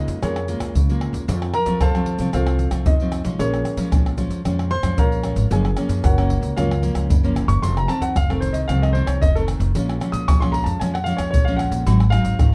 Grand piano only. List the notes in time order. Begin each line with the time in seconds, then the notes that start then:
Already playing: D#4 D#5
0.23 C#4 G#4 A#4 C#5
1.54 A#4 A#5
1.82 A4 C5 F5 A5
2.34 F4 A4 C5 F5
2.86 D#4 D#5
3.39 C#4 G#4 A#4 C#5
4.71 C5 C6
4.99 A#4 C#5 F5 A#5
5.52 G#4 G#5
6.05 F#4 A#4 C#5 F#5
6.56 F4 A#4 C#5 F5
7.48 C#6
7.62 C6
7.77 A#5
7.88 A5
8.02 F#5
8.17 F5
8.30 A4
8.40 C5
8.53 D#5
8.68 F5
8.82 D#5
8.93 C5
9.06 C#5
9.21 D#5
9.35 A4
10.12 D#6
10.28 C#6
10.40 C6
10.52 A#5
10.64 A5
10.80 G#5
10.94 F#5
11.04 F5
11.17 C#5
11.31 C#5
11.45 F5
11.56 F#5
12.10 F5